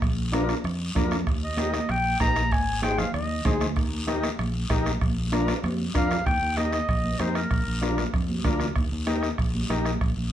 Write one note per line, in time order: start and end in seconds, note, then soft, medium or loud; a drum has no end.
0.02 0.52 A#1 medium
0.02 bombo low medium
0.02 bombo rim medium
0.02 long guiro medium
0.18 high conga soft
0.32 0.55 D4 medium
0.32 0.55 F4 medium
0.32 0.55 A#4 loud
0.32 bombo rim medium
0.32 high conga loud
0.32 short guiro medium
0.49 bombo rim medium
0.49 short guiro medium
0.64 0.89 F2 medium
0.64 bombo rim medium
0.64 high conga soft
0.64 long guiro medium
0.95 1.27 F2 loud
0.95 1.17 D4 medium
0.95 1.17 F4 medium
0.95 1.18 A#4 medium
0.95 bombo low medium
0.95 bombo rim medium
0.95 high conga medium
0.95 low conga medium
0.95 short guiro medium
1.11 bombo rim medium
1.11 high conga medium
1.11 short guiro medium
1.27 1.77 D#2 medium
1.27 bombo low medium
1.27 bombo rim medium
1.27 long guiro medium
1.42 1.92 D#5 medium
1.42 high conga soft
1.57 1.80 D#4 medium
1.57 1.80 G4 medium
1.57 1.80 A#4 medium
1.57 bombo rim medium
1.57 high conga loud
1.57 short guiro medium
1.73 bombo rim medium
1.73 high conga medium
1.73 short guiro medium
1.89 2.14 A#1 medium
1.89 2.20 G5 loud
1.89 bombo rim medium
1.89 high conga soft
1.89 long guiro medium
2.20 2.52 A#1 medium
2.20 2.42 D#4 medium
2.20 2.42 G4 medium
2.20 2.42 A#4 medium
2.20 2.54 A#5 loud
2.20 bombo low medium
2.20 bombo rim medium
2.20 high conga medium
2.20 short guiro medium
2.36 bombo rim medium
2.36 high conga medium
2.36 short guiro medium
2.51 3.02 G#1 loud
2.51 2.82 G#5 medium
2.51 bombo low medium
2.51 bombo rim medium
2.51 long guiro medium
2.67 high conga soft
2.82 3.05 D#4 medium
2.82 3.05 G#4 medium
2.82 3.05 C5 medium
2.82 3.00 G5 medium
2.82 bombo rim medium
2.82 high conga medium
2.82 short guiro medium
2.98 3.14 F5 medium
2.98 bombo rim medium
2.98 high conga medium
2.98 low conga medium
2.98 short guiro medium
3.14 3.39 D#2 medium
3.14 3.58 D#5 medium
3.14 bombo rim medium
3.14 high conga soft
3.14 long guiro medium
3.45 3.77 D2 medium
3.45 3.67 D#4 medium
3.45 3.67 G#4 medium
3.45 3.67 C5 medium
3.45 bombo low medium
3.45 bombo rim medium
3.45 high conga medium
3.45 low conga medium
3.45 short guiro medium
3.61 bombo rim medium
3.61 high conga medium
3.61 short guiro medium
3.76 4.27 D#2 loud
3.76 bombo low medium
3.76 bombo rim medium
3.76 long guiro medium
3.92 high conga soft
4.07 4.29 D#4 medium
4.07 4.29 G4 medium
4.07 4.29 A#4 loud
4.07 bombo rim medium
4.07 high conga loud
4.07 short guiro medium
4.23 bombo rim medium
4.23 high conga medium
4.23 short guiro medium
4.39 4.64 A#1 loud
4.39 bombo rim medium
4.39 high conga soft
4.39 long guiro medium
4.69 4.95 A#1 loud
4.69 4.92 D#4 medium
4.69 4.92 G4 medium
4.69 4.92 A#4 loud
4.69 bombo low medium
4.69 bombo rim medium
4.69 high conga medium
4.69 short guiro medium
4.86 bombo rim medium
4.86 high conga medium
4.86 short guiro medium
5.01 5.51 A#1 loud
5.01 bombo low medium
5.01 bombo rim medium
5.01 long guiro medium
5.17 high conga soft
5.32 5.54 D4 medium
5.32 5.54 F4 medium
5.32 5.54 A#4 loud
5.32 bombo rim medium
5.32 high conga loud
5.32 short guiro medium
5.48 bombo rim medium
5.48 high conga medium
5.48 short guiro medium
5.63 5.89 F2 medium
5.63 bombo rim medium
5.63 high conga medium
5.63 long guiro medium
5.94 6.20 F2 medium
5.94 6.16 D4 medium
5.94 6.17 F4 medium
5.94 6.17 A#4 loud
5.94 6.24 F5 loud
5.94 bombo low medium
5.94 bombo rim medium
5.94 low conga medium
5.94 short guiro medium
6.11 bombo rim medium
6.11 low conga medium
6.11 short guiro medium
6.26 6.39 D#2 medium
6.26 6.59 G5 loud
6.26 bombo low medium
6.26 bombo rim medium
6.26 high conga soft
6.26 long guiro medium
6.42 6.79 D#2 medium
6.57 6.79 D#4 medium
6.57 6.79 G4 medium
6.57 6.79 A#4 medium
6.57 6.72 D#5 medium
6.57 bombo rim medium
6.57 high conga medium
6.57 short guiro medium
6.73 7.22 D#5 medium
6.73 bombo rim medium
6.73 short guiro medium
6.89 7.14 A#1 loud
6.89 bombo low medium
6.89 bombo rim medium
6.89 long guiro medium
7.04 high conga medium
7.19 7.45 F2 medium
7.19 7.41 D#4 medium
7.19 7.42 G4 medium
7.19 7.42 A#4 medium
7.19 7.37 C5 medium
7.19 bombo rim medium
7.19 high conga medium
7.19 short guiro medium
7.35 7.83 A#4 medium
7.35 bombo rim medium
7.35 short guiro medium
7.51 7.63 A#1 medium
7.51 bombo low medium
7.51 bombo rim medium
7.51 long guiro medium
7.66 8.04 A#1 medium
7.81 8.04 D4 medium
7.81 8.04 F4 medium
7.81 8.04 A#4 medium
7.81 bombo rim medium
7.81 high conga medium
7.81 short guiro medium
7.98 bombo rim medium
7.98 low conga medium
7.98 short guiro medium
8.14 8.39 F2 medium
8.14 bombo low medium
8.14 bombo rim medium
8.14 high conga soft
8.14 long guiro medium
8.29 high conga medium
8.44 8.70 D2 medium
8.44 8.67 D4 medium
8.44 8.67 F4 medium
8.44 8.67 A#4 medium
8.44 bombo low medium
8.44 bombo rim medium
8.44 high conga medium
8.44 low conga medium
8.44 short guiro medium
8.60 bombo rim medium
8.60 high conga medium
8.60 short guiro medium
8.76 8.89 D#2 loud
8.76 bombo low medium
8.76 bombo rim medium
8.76 high conga soft
8.76 long guiro medium
8.92 9.29 D#2 medium
9.07 9.29 D#4 medium
9.07 9.29 G4 medium
9.07 9.29 A#4 loud
9.07 bombo rim medium
9.07 high conga medium
9.07 short guiro medium
9.23 bombo rim medium
9.23 short guiro medium
9.38 9.64 A#1 loud
9.38 bombo low medium
9.38 bombo rim medium
9.38 high conga soft
9.38 long guiro medium
9.55 high conga medium
9.69 9.95 A#1 medium
9.69 9.92 D#4 medium
9.69 9.92 G4 medium
9.69 9.92 A#4 medium
9.69 bombo rim medium
9.69 high conga medium
9.69 short guiro medium
9.85 bombo rim medium
9.85 high conga medium
9.85 short guiro medium
10.01 10.14 A#1 loud
10.01 bombo low medium
10.01 bombo rim medium
10.01 high conga soft
10.01 long guiro medium
10.17 10.32 A#1 medium